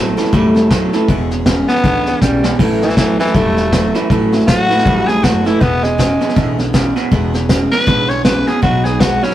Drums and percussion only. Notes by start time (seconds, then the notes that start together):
0.17 snare
0.25 snare
0.32 kick, snare
0.55 snare
0.71 kick, snare, hi-hat pedal
0.93 snare
1.08 kick, snare
1.31 snare
1.46 kick, snare, hi-hat pedal
1.69 snare
1.76 snare
1.83 kick, snare
2.06 snare
2.22 kick, snare, hi-hat pedal
2.44 snare
2.59 kick, snare, crash
2.82 snare
2.90 snare
2.97 kick, snare, hi-hat pedal
3.19 snare
3.27 snare
3.34 kick, snare
3.57 snare
3.72 kick, snare, hi-hat pedal
3.94 snare
4.10 kick, snare
4.33 snare
4.40 snare
4.48 kick, snare, hi-hat pedal
4.70 snare
4.78 snare
4.86 kick, snare
5.08 snare
5.24 kick, snare, hi-hat pedal
5.46 snare
5.61 kick, snare
5.84 snare
5.99 kick, snare, hi-hat pedal
6.21 snare
6.29 snare
6.37 kick, snare
6.59 snare
6.74 kick, snare, hi-hat pedal
6.96 snare
7.11 kick, snare
7.34 snare
7.49 kick, snare, hi-hat pedal
7.72 snare
7.80 snare
7.87 kick, snare
8.10 snare
8.25 kick, snare, hi-hat pedal
8.47 snare
8.63 kick, snare
8.85 snare
9.00 kick, snare, hi-hat pedal
9.23 snare
9.31 snare